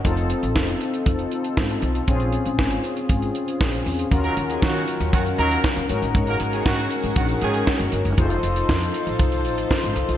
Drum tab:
HH |xxxx-xxxxxxx-xxx|xxxx-xxxxxxx-xox|xxxx-xxxxxxx-xxx|xxxx-xxxxxxx-xxx|
CP |----x-------x---|----x-------x---|----x-------x---|----x-------x---|
SD |----o-------o---|----o-------o---|----o-------o---|----o-------o---|
BD |o---o---o---o---|o---o---o---o---|o---o---o---o---|o---o---o---o---|

HH |xxxx-xxxxxxx-xxx|
CP |----x-------x---|
SD |----o-------o---|
BD |o---o---o---o---|